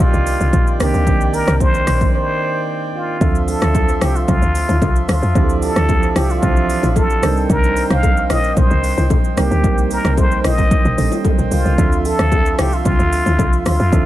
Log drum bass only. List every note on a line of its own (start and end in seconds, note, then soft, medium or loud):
0.00 0.12 A#1 loud
0.14 0.37 C2 loud
0.40 0.51 C2 medium
0.53 0.76 A#1 loud
0.80 0.92 C2 medium
0.94 1.08 D2 medium
1.07 1.42 C2 loud
1.48 1.82 C2 loud
1.87 2.10 A#1 medium
3.21 3.56 D2 loud
3.62 3.96 D2 loud
4.01 4.25 C2 medium
4.28 4.40 C2 loud
4.42 4.65 D2 medium
4.69 4.80 D2 loud
4.82 5.05 C2 loud
5.09 5.21 D2 loud
5.22 5.34 F2 medium
5.35 5.70 D2 loud
5.76 6.10 D2 loud
6.16 6.39 C2 loud
6.43 6.78 C2 loud
6.83 7.17 A1 loud
7.23 7.46 C2 loud
7.50 7.85 C2 loud
7.90 8.25 C2 loud
8.30 8.53 A#1 medium
8.57 8.69 A#1 loud
8.71 8.94 C2 loud
8.98 9.09 C2 medium
9.10 9.33 A#1 medium
9.37 9.49 C2 medium
9.51 9.65 D2 medium
9.64 9.99 C2 loud
10.05 10.39 C2 loud
10.44 10.67 A#1 medium
10.85 10.96 A#1 loud
10.98 11.10 A1 loud
11.38 11.50 A#1 medium
11.51 11.63 C2 medium
11.65 11.76 C2 medium
11.78 12.13 D2 loud
12.19 12.53 D2 loud
12.59 12.82 C2 medium
12.85 12.97 C2 loud
12.99 13.22 D2 medium
13.26 13.37 D2 loud
13.39 13.62 C2 medium
13.66 13.78 D2 loud
13.80 13.91 F2 medium
13.93 14.06 D2 loud